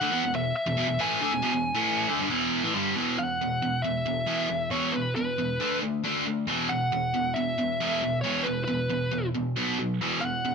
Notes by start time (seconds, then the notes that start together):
Already playing: F#5
0.01 D3 A3
0.11 E3 B3
0.23 E2 B2
0.34 E2 B2 E5
0.56 E5
0.66 E2 B2
0.77 E2 B2
0.88 E2 B2
0.99 A2 E3 A3 G#5
1.21 D3 A3
1.32 E2 B2
1.42 E2 B2
1.53 E2 B2
1.75 A2 E3 A3
2.08 D3 A3
2.19 G2 D3
2.30 E2 B2 E3
2.64 A2 E3
2.74 G2 D3 G3
2.96 E2 B2 E3
3.19 E2 B2 F#5
3.41 E2 B2
3.62 E2 B2
3.82 E2 B2 E5
4.06 E2 B2
4.27 E2 B2 E3
4.49 E2 B2
4.71 E2 B2 E3 C#5
4.92 E2 B2 B4
5.15 E2 B2 B4
5.38 E2 B2
5.60 D3 A3 D4
5.82 D3 A3
6.04 D3 A3 D4
6.26 D3 A3
6.47 E2 B2 E3
6.69 E2 B2 F#5
6.92 E2 B2
7.14 E2 B2
7.34 E2 B2 E5
7.58 E2 B2
7.80 E2 B2 E3
8.02 E2 B2
8.21 E2 B2 E3 C#5
8.43 E2 B2 B4
8.64 E2 B2 B4
8.90 E2 B2
9.11 E2 B2
9.34 E2 B2
9.56 B2 F#3 B3
9.79 B2 F#3
10.01 E2 B2 E3
10.21 E2 B2 F#5
10.45 E2 B2